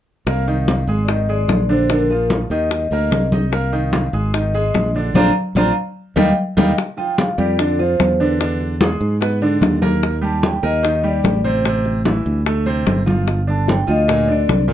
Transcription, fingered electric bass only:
0.27 C2
0.87 G#1
1.48 A#1
2.50 D#2
2.91 D2
3.11 C2
4.13 G#1
4.74 A#1
5.14 A#1
5.55 A#1
6.16 D#2
6.57 D#2
7.38 F2
8.00 E2
9.01 G#2
9.61 D#2
10.63 D#2
11.24 A1
12.26 D2
12.87 G1
13.88 D2
14.49 C2

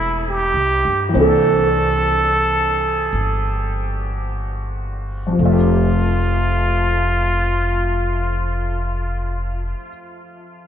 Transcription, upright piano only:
Already playing: G3 A3 C4 E4 A4
1.09 E3 A#3
1.14 C4 D4
1.20 A4
5.27 F2
5.33 F3
5.39 A3
5.45 E5
5.52 G4

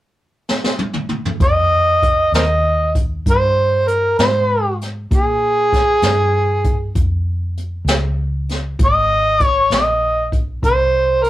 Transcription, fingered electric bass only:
1.40 F2
2.32 D#2
3.26 G2
4.19 G#2
5.11 A#2
6.02 G2
6.95 F2
7.85 C#2
8.79 G#1
9.70 A#1
10.62 C2

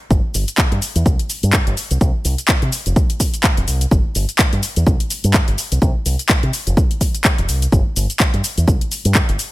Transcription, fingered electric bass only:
0.11 G1
0.34 G1
0.72 G2
0.95 E2
1.43 G2
1.67 G1
1.91 C2
2.01 C2
2.25 C2
2.62 C3
2.86 F1
3.57 F1
3.68 C2
3.91 G1
4.15 G1
4.53 G2
4.76 E2
4.87 C2
5.24 G2
5.48 G1
5.72 C2
5.82 C2
6.06 C2
6.43 C3
6.67 F1
7.38 F1
7.49 C2
7.72 G1
7.96 G1
8.34 G2
8.57 E2
8.68 C2
9.05 G2
9.29 G1

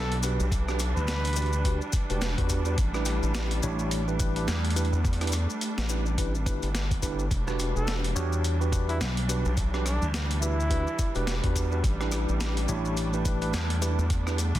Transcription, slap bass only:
Already playing: B1
0.96 D2
3.63 A1
4.48 E2
8.16 E2
9.00 B1
10.02 D2
12.69 A1
13.54 E2
14.55 A1

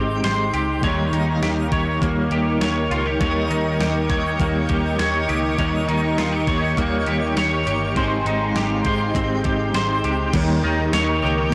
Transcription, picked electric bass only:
Already playing: G#1
0.24 G#1
0.53 C#2
0.83 D#2
1.13 D#2
1.42 D#2
1.72 D#2
2.02 D#2
2.31 D#2
2.60 D#2
2.90 C#2
3.21 D#2
3.50 D#2
3.80 D#2
4.10 D#2
4.40 D#2
4.70 D#2
4.99 D#2
5.29 C#2
5.59 D#2
5.88 D#2
6.18 D#2
6.47 D#2
6.77 D#2
7.07 D#2
7.37 D#2
7.66 G1
7.96 G#1
8.25 G#1
8.55 G#1
8.85 G#1
9.15 G#1
9.45 G#1
9.74 G#1
10.04 C#2
10.34 D#2
10.64 D#2
10.93 D#2
11.23 C#2

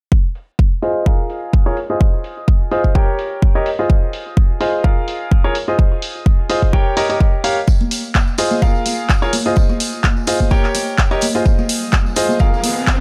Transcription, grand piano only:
0.82 F4 G#4 C5 D#5
1.06 F4 G#4 A#4 F5
1.66 F4 G#4 A#4 C#5
1.90 F4 G#4 C5 D#5
2.71 F4 G#4 C5 D#5
2.95 G4 A#4 C#5 G5
3.55 G4 A#4 C#5 D#5
3.79 F4 G#4 C5 D#5
4.61 F4 G#4 C5 D#5
4.84 F4 G#4 A#4 F5
5.44 F4 G#4 A#4 C#5
5.68 F4 G#4 C5 D#5
6.49 F4 G#4 C5 D#5
6.73 G4 A#4 C#5 G5
6.97 G4 A#4 C#5 D#5
7.09 G4 A#4 C#5 D#5
7.44 G4 A#4 C#5 F5
8.38 F4 G#4 C5 D#5
8.62 F4 G#4 A#4 F5
9.22 F4 G#4 A#4 C#5
9.46 F4 G#4 C5 D#5
10.27 F4 G#4 C5 D#5
10.51 G4 A#4 C#5 G5
11.11 G4 A#4 C#5 D#5
11.35 F4 G#4 C5 D#5
12.16 F4 G#4 C5 D#5
12.40 F4 G#4 A#4 F5

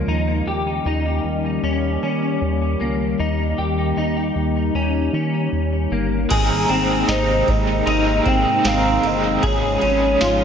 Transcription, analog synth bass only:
0.07 D#2
0.46 D#2
0.85 D#2
1.24 D#2
1.63 D#2
2.02 D#3
2.41 D#2
2.80 C#2
3.19 D#2
3.58 D#2
3.97 D#2
4.35 D#2
4.74 D#2
5.13 D#3
5.52 D#2
5.91 G1
6.30 G#1
6.69 G#1
7.08 G#1
7.48 G#1
7.86 G#1
8.26 G#2
8.64 G#1
9.03 G1
9.43 G#1
9.82 G#1
10.21 G#1

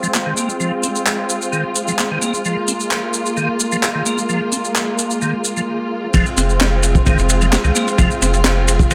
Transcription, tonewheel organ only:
0.03 F3
0.14 A#3
0.26 D#3
0.37 A#3
0.60 F3
0.83 C4
1.52 D#3
1.88 F3
1.99 A#3
2.11 D#3
2.22 A#3
2.45 F3
2.68 C4
3.37 D#3
3.72 F3
3.83 A#3
3.95 D#3
4.06 A#3
4.29 F3
4.52 C4
5.22 D#3
5.57 F3
6.14 F3
6.37 C4
7.06 D#3
7.41 F3
7.52 A#3
7.64 D#3
7.75 A#3
7.98 F3
8.22 C4
8.91 D#3

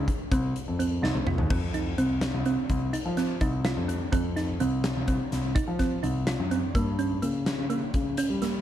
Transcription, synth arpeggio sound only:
Already playing: D#4
0.32 C4
0.79 C4
1.03 D#4
1.27 F4
1.50 C4
1.74 D#4
1.98 C4
2.46 C4
2.93 D#4
3.17 C4
3.41 D#4
3.65 F4
3.88 C4
4.12 C4
4.36 D#4
4.60 C4
5.08 C4
5.55 D#4
5.79 C4
6.03 D#4
6.27 F4
6.51 C4
6.75 A#3
6.99 C#4
7.22 A#3
7.70 A#3
8.18 C#4
8.42 A#3

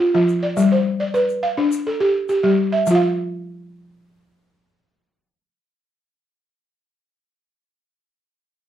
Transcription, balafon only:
0.00 F4
0.14 F3 F4
0.43 D5
0.57 G3
0.72 C5
1.00 D5
1.14 B4
1.43 F5
1.57 D4
1.87 A4
2.00 G4
2.29 G4
2.43 G3 G4
2.72 E5
2.87 F3 F4
2.95 F5

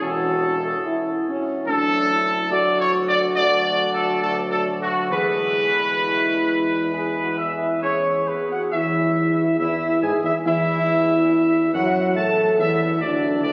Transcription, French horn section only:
0.03 F#4
0.86 E4
1.28 C#4
1.69 D4
2.11 E4
2.51 F#4
5.11 G#4
6.04 E4
6.94 G#4
7.23 F#4
7.37 E4
7.52 G#4
7.82 C#4 G#4
8.28 B3 G#4
8.51 F#4
8.74 E4
9.59 E4
10.03 G#4
10.25 E4
10.46 E4
11.74 F#4
12.18 A4
12.58 E4
13.02 D4
13.44 D4

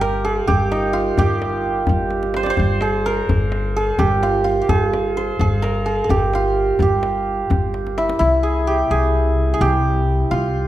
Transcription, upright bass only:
Already playing: G1
0.49 G1
1.19 G1
1.89 G1
2.59 G1
3.29 G1
3.99 G1
4.69 G1
5.39 G1
6.09 G1
6.80 G1
7.50 G1
8.20 C2
8.91 C2
9.61 C2
10.31 C2

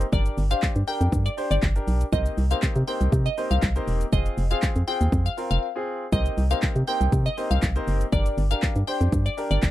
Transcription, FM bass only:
0.13 G1
0.38 G1
0.63 G2
0.76 G2
1.01 F2
1.12 G2
1.51 G1
1.63 G1
1.88 B1
2.13 C2
2.38 C2
2.63 C3
2.76 C3
3.01 C2
3.12 C3
3.51 C2
3.63 C2
3.88 E1
4.13 F1
4.38 F1
4.63 F2
4.76 F2
5.01 D#2
5.12 F2
5.51 F1
6.12 C2
6.38 C2
6.63 C3
6.76 C3
7.01 C2
7.12 C3
7.51 C2
7.63 C2
7.88 F#1
8.13 G1
8.38 G1
8.63 G2
8.76 G2
9.01 F2
9.12 G2
9.51 G1
9.63 G1

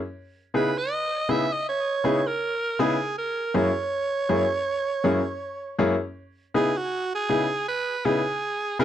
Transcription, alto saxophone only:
0.56 B4
0.78 D#5
1.31 E5
1.53 D#5
1.69 C#5
2.27 A#4
2.81 G#4
3.18 A#4
3.56 C#5
6.56 G#4
6.77 F#4
7.15 G#4
7.69 B4
8.05 G#4
8.81 A#4

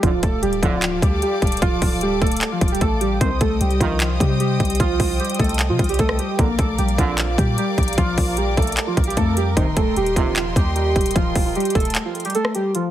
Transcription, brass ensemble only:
0.03 F2 A2 D3
0.63 F2 A2 D3
3.21 G2 C3 D#3
3.81 G2 C3 D#3
6.39 F2 A#2 D3
6.98 F2 A#2 D3
9.57 D#2 G2 C3
10.16 D#2 G2 C3

